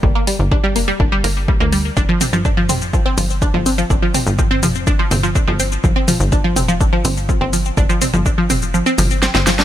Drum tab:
HH |--o---o---o---o-|--o---o---o---o-|--o---o---o---o-|--o---o---o---o-|
SH |----------------|x-xxx-xxx-xxx-xx|x-xxx-xxx-xxx-xx|x-xxx-xxx-xxx-xx|
SD |----------------|----------------|----------------|----------------|
T2 |----------------|--o---o---------|--o---o---o-----|--o---o---------|
BD |o---o---o---o---|o---o---o---o---|o---o---o---o---|o---o---o---o---|

HH |--o---o---o---o-|
SH |xxxxx-xxxxxxxxxx|
SD |------------oooo|
T2 |--o---o---o-----|
BD |o---o-----------|